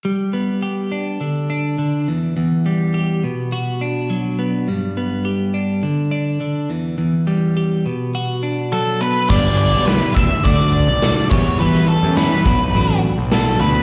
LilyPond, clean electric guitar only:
\new Staff \with { instrumentName = "Clean electric guitar" } { \time 4/4 \key g \lydian \tempo 4 = 104 g8 b8 g'8 d'8 d8 d'8 d8 e,8 | e,8 g8 g'8 b,8 fis'8 d'8 fis8 b8 | g,8 b8 g'8 d'8 d8 d'8 d8 e,8 | e,8 g8 g'8 b,8 fis'8 d'8 fis8 b8 |
<g, d g b d' g'>8. <g b d' g'>16 <g, d g b d' g'>8 <g b d' g'>8 <d a d' fis'>16 <a d' fis'>8. <d a d' fis'>8 <e, b, e g b g'>16 <e g b g'>16 | <e, b, e g b g'>8. <e g b g'>16 <e, b, e g b g'>8 <b, fis b d' fis'>8 <fis b d' fis'>16 <b d' fis'>8. <b, fis b d' fis'>8 <fis b d' fis'>16 <b d' fis'>16 | }